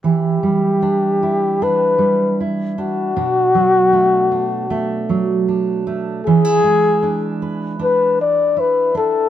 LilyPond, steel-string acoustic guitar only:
\new Staff \with { instrumentName = "Steel-string acoustic guitar" } { \time 4/4 \key e \dorian \tempo 4 = 78 << { e'4 d'8 e'8 d'4 e'8 d'8 | d'4 a8 d'8 a4 d'8 a8 | cis'16 e'8. d'8 b'8 d'4 e'8 d'8 | } \\ { e8 g2 g4. | b,8 fis2 fis4. | e8 gis2 r4. | } >> }